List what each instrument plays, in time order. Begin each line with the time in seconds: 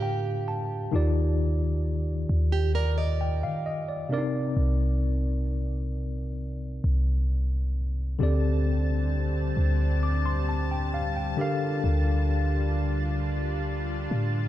Already playing: 808-style bass A2, tine electric piano D3 D4 F4 G4 A4 A#4 F5, steel-string acoustic guitar G4
0.02 tine electric piano G5
0.48 tine electric piano A5
0.91 808-style bass D#2, tine electric piano D#3 D#4 F4 G4
0.96 tine electric piano D5
2.29 808-style bass D#2
2.52 steel-string acoustic guitar G4
2.75 steel-string acoustic guitar A#4, tine electric piano D5
2.98 steel-string acoustic guitar D5, tine electric piano D#5
3.21 tine electric piano G5
3.43 808-style bass D#3, tine electric piano F5
3.66 tine electric piano D#5
3.89 tine electric piano D5
4.09 tine electric piano C3 C4 D4 A#4
4.13 tine electric piano D5
4.18 tine electric piano D#4
4.57 808-style bass C2
6.84 808-style bass C2
8.19 808-style bass D2, tine electric piano D3 C4 G4 A4, analog synth pad G3 C4 D4 A5
8.23 tine electric piano D5
9.57 808-style bass D2
10.03 tine electric piano D6
10.26 tine electric piano C6
10.49 tine electric piano A5
10.71 tine electric piano G5
10.94 tine electric piano F5
11.16 tine electric piano G5
11.37 tine electric piano D3 D4 G4 A4 A#4, analog synth pad D4 F4
11.41 tine electric piano F5
11.84 808-style bass D2
14.11 808-style bass A2